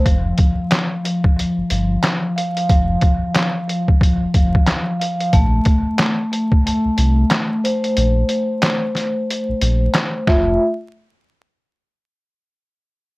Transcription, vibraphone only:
X:1
M:4/4
L:1/8
Q:"Swing 16ths" 1/4=91
K:Bblyd
V:1 name="Vibraphone"
F, F,2 F, F, F,2 f | F, F,2 F, F, F,2 f | A, A,2 A, A, A,2 c | z6 z [A,Fe] |
z8 |]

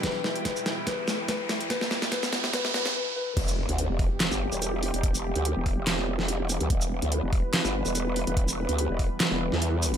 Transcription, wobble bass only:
X:1
M:4/4
L:1/16
Q:"Swing 16ths" 1/4=144
K:Em
V:1 name="Wobble bass" clef=bass
z16 | z16 | E,,,3 D,,2 E,,,2 z2 G,,,2 E,,,4 E,,,- | E,,, E,,,2 D,,2 E,,,2 E,,,8 D,, |
E,,,3 D,,2 E,,,2 z2 G,,,2 E,,,4 E,,,- | E,,, E,,,2 D,,2 E,,,2 z2 E,,,2 E,,4- E,, |]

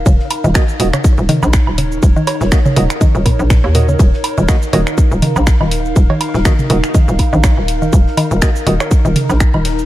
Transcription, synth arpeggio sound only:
X:1
M:4/4
L:1/16
Q:"Swing 16ths" 1/4=122
K:Ebm
V:1 name="Synth arpeggio sound" clef=bass
D, z2 E, z3 D, z2 E, z3 D, z | z E, z3 D, z2 E, z B,, z B,, z B,, D, | z3 E, z2 E, z3 E, z2 E, z2 | z E, z2 E, z3 E, z2 E, z3 E, |
z2 E, z3 E, z2 E, z3 E, z2 |]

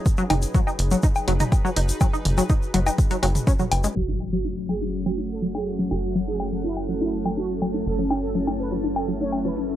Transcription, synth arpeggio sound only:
X:1
M:4/4
L:1/16
Q:1/4=123
K:F#dor
V:1 name="Synth arpeggio sound" clef=bass
z F, D z F, D z F, D z F, D z F, D z | F, D z F, D z F, D z F, F, z C F, z G, | F, D z F, D z F, D z F, D z F, D z F, | D z F, D z F, D z F, D z F, D z F, D |
z F, D z F, D z F, D z F, D z F, D z |]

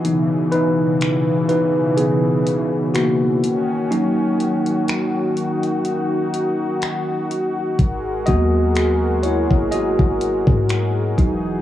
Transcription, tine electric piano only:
X:1
M:4/4
L:1/8
Q:"Swing 16ths" 1/4=62
K:G#m
V:1 name="Tine electric piano"
z [DB]2 [DB] [B,G]2 [A,F]2 | D2 z6 | z [Fd]2 [Ec] [Fd]4 |]
V:2 name="Tine electric piano"
[E,B,D]6- [E,B,D] z | [F,A,C]8 | z [F,A,B,]6 [F,G,D] |]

